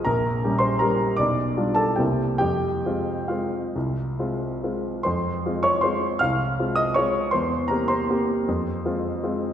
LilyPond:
\new Staff \with { instrumentName = "Grand piano" } { \time 3/4 \key f \minor \tempo 4 = 155 << { <bes' bes''>4. <c'' c'''>8 <bes' bes''>4 | <d'' d'''>4. <a' a''>8 <g' g''>4 | <g' g''>2 <f' f''>4~ | <f' f''>2 r4 |
<c'' c'''>4. <des'' des'''>8 <c'' c'''>4 | <f'' f'''>4. <ees'' ees'''>8 <des'' des'''>4 | <c'' c'''>4 <bes' bes''>8 <c'' c'''>4.~ | <c'' c'''>2~ <c'' c'''>8 r8 | } \\ { bes,,4 <g des' g'>4 <g des' g'>4 | b,,4 <g d' f'>4 <c, bes c' e'>4 | f,4 <aes c' f'>4 <aes c'>4 | c,4 <aes c' f'>4 <aes c' f'>4 |
f,4 <aes c' f'>4 <aes c' f'>4 | c,4 <aes c' f'>4 <aes c' f'>4 | e,4 <bes c' g'>4 <bes c' g'>4 | f,4 <aes c' f'>4 <aes c' f'>4 | } >> }